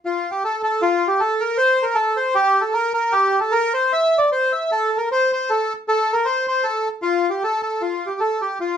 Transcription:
bandoneon
0.05 F4
0.31 G4
0.45 A4
0.63 A4
0.82 F4
1.08 G4
1.20 A4
1.40 A#4
1.58 C5
1.83 A#4
1.95 A4
2.17 C5
2.35 G4
2.61 A4
2.74 A#4
2.94 A#4
3.12 G4
3.40 A4
3.52 A#4
3.74 C5
3.93 E5
4.18 D5
4.32 C5
4.52 E5
4.72 A4
4.98 A#4
5.12 C5
5.33 C5
5.50 A4
5.88 A4
6.13 A#4
6.25 C5
6.48 C5
6.64 A4
7.02 F4
7.30 G4
7.44 A4
7.63 A4
7.82 F4
8.06 G4
8.20 A4
8.41 G4
8.60 F4

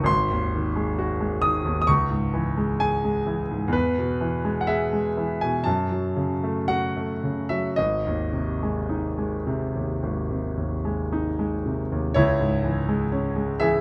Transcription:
grand piano
0.04 G#1 C6
0.31 D#2
0.55 D#3
0.76 G#3
0.99 F#4
1.20 G#3
1.42 D#3 D#6
1.65 D#2
1.82 D#6
1.87 C#2 C#6
2.10 G#2
2.34 E3
2.57 G#3
2.80 G#4 G#5
3.04 G#3
3.26 E3
3.51 G#2
3.68 E2
3.73 B4
3.98 B2
4.21 E3
4.45 G#3
4.61 F#5
4.67 G#4 E5
4.93 G#3
5.17 E3
5.41 B2 G#5
5.64 F#2 A5
5.91 F#3
6.16 C#3
6.43 A3
6.68 F#4 F#5
6.97 A3
7.24 C#3
7.49 F#3 E5
7.76 G#1 D#5
8.07 D#2
8.33 C3
8.63 G#3
8.89 D#4
9.18 G#3
9.47 C3
9.75 D#2
10.03 G#1
10.30 C3
10.57 D#2
10.85 G#3
11.12 D#4
11.39 G#3
11.66 C3
11.92 D#2
12.14 C#2 E4 C#5
12.40 G#2
12.64 E3
12.89 G#3
13.12 C#4
13.36 G#3
13.60 E3 G#4 E5

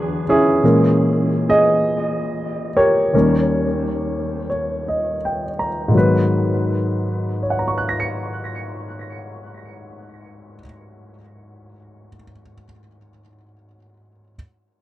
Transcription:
grand piano
Already playing: E2 D3 E3 F#3 B3 D4 G#4 B4
0.29 C#4 E4 G#4
0.63 A#2 E3 G#3 C#4 A#4
1.49 G#4 D#5
2.76 G4 A#4 C#5
3.13 D#2 D#3 G3 C#4 A#4
4.50 C#5
4.88 D#5
5.25 G5
5.59 A#5
5.88 G#2 D#3
5.94 F#3 B3 B4
7.43 C#5
7.50 F#5
7.59 A#5
7.68 C#6
7.78 F#6
7.89 A#6
8.00 C#7

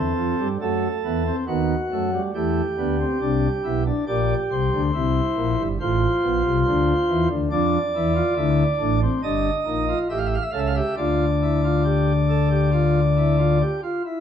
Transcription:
pipe organ
Already playing: E2 E3 C4 A4
0.16 F2 F3
0.39 G2 G3
0.61 F#2 F#3 A3 A4
1.05 E2 E3 B3
1.26 C4
1.47 D#2 D#3 B3 F#4
1.92 F#2 F#3 A3
2.13 G3
2.34 E2 E3 A3 G4
2.78 D2 D3 B3
3.00 C4
3.21 C2 C3 D4
3.64 B1 B2 E4
3.86 D4
4.07 A#1 A#2 G4 D5
4.51 C2 C3 C5
4.72 D2 D3
4.94 C2 C3 E4
5.36 A#1 A#2
5.59 G1 G2
5.80 A1 A2 F4 C5
6.23 B1 B2
6.46 C2 C3
6.67 D2 D3
7.09 E2 E3
7.30 D2 D3
7.51 F2 F3 D4 D5
7.95 E2 E3 E4
8.15 F4
8.36 D2 D3 E4
8.79 A1 A2 D4
9.02 C4
9.23 G1 G2 D4 D#5
9.66 A#1 A#2 D#4
9.89 F4
10.10 A1 A2 G4 E5
10.18 F5
10.26 E5
10.34 F5
10.42 E5
10.51 C#2 C#3 A4 F5
10.59 E5
10.66 F5
10.75 G4 E5
10.97 D2 D3 F4 D5
11.42 E4
11.64 F4
11.84 G4
12.29 A4
12.51 G4
12.72 F4
13.17 E4
13.39 F4
13.62 G4
13.83 F4
14.05 E4

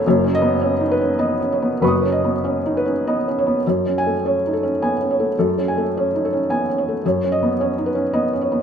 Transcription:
felt piano
0.07 F#1 F#2 C#5
0.24 C#4
0.35 D#5
0.42 B3
0.61 C#4 C#5
0.80 D#4
0.91 B4
1.01 C#4
1.18 B3 D#5
1.41 C#4
1.52 C#5
1.62 B3
1.81 F#1 F#2 B4 B5 C#6
1.88 D#6
2.03 C#4
2.12 D#5
2.24 B3
2.44 C#4 C#5
2.66 D#4
2.77 B4
2.86 C#4
3.07 B3 D#5
3.28 C#4
3.38 C#5
3.47 B3
3.67 F#2 C#5
3.86 C#4
3.98 G#5
4.07 A3
4.25 C#4 C#5
4.47 D#4
4.53 A4
4.63 C#4
4.82 B3 G#5
5.01 C#4
5.11 C#5
5.20 A3
5.39 F#2 A4
5.58 C#4
5.68 G#5
5.78 A3
5.97 C#4 C#5
6.15 D#4
6.25 A4
6.33 C#4
6.50 B3 G#5
6.69 C#4
6.78 C#5
6.89 A3
7.05 F#2 C#5
7.24 C#4
7.32 D#5
7.43 B3
7.60 C#4 C#5
7.78 D#4
7.86 B4
7.95 C#4
8.13 B3 D#5
8.33 C#4
8.41 C#5
8.52 B3

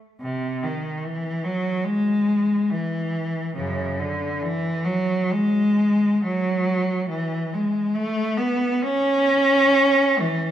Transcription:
cello
0.21 C3
0.63 D#3
1.04 E3
1.44 F#3
1.85 G#3
2.70 E3
3.56 F#2 C#3
4.00 D3
4.42 E3
4.85 F#3
5.32 G#3
6.21 F#3
7.09 E3
7.54 G#3
7.96 A3
8.37 B3
8.82 C#4
10.19 E3

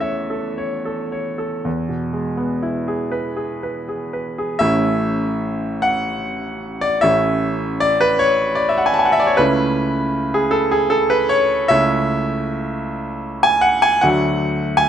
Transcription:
grand piano
Already playing: E2 E3 A3 C#4 E4 A4 F#5
0.00 C#5 E5
0.30 A4
0.58 C#5
0.85 A4
1.12 C#5
1.38 A4
1.65 E2
1.89 B2
2.13 G#3
2.37 B3
2.62 E4
2.88 G#4
3.12 B4
3.37 G#4
3.63 B4
3.88 G#4
4.13 B4
4.38 G#4
4.59 A1 A3 C#4 E4 E5
5.82 F#5
6.81 D5
7.01 A1 A3 C#4 E4 E5
7.80 D5
8.01 B4
8.19 C#5
8.55 D5
8.69 E5
8.78 F#5
8.86 G#5
8.94 A5
8.99 G#5
9.05 F#5
9.12 E5
9.20 D5
9.27 C#5
9.37 C#2 A3 C#4 E4 B4
10.34 G#4
10.51 A4
10.71 G#4
10.90 A4
11.10 B4
11.29 C#5
11.68 C#2 A3 C#4 E4 E5
13.43 G#5
13.61 F#5
13.82 G#5
14.01 D2 F#3 A3 D4 F#5
14.77 G#5

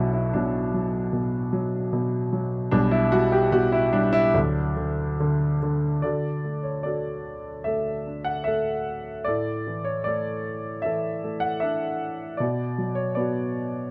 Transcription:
grand piano
Already playing: B1 B2 F#3 E4 F#4
0.13 E4
0.33 B2 F#3 D4
0.74 F#3
1.13 B2
1.53 F#3
1.93 B2
2.33 F#3
2.71 B1 B2 G3 D4
2.91 E4
3.12 G3 F#4
3.32 G4
3.52 B2 F#4
3.72 E4
3.93 G3 D4
4.13 E4
4.34 D2 D3 F#3 D4
4.77 D3
5.20 D3
5.63 D3
6.02 D3 F#4 A4 D5
6.44 A3
6.63 C#5
6.83 D4 F#4 A4 D5
7.64 A3 A4 E5
8.07 D4
8.25 F#5
8.44 A3 A4 E5
9.24 A2 A4 D5
9.67 E3
9.84 C#5
10.04 A3 A4 D5
10.82 E3 A4 E5
11.24 A3
11.40 F#5
11.60 D4 A4 E5
12.37 B2 F#4 D5
12.78 F#3
12.95 C#5
13.15 B3 F#4 D5

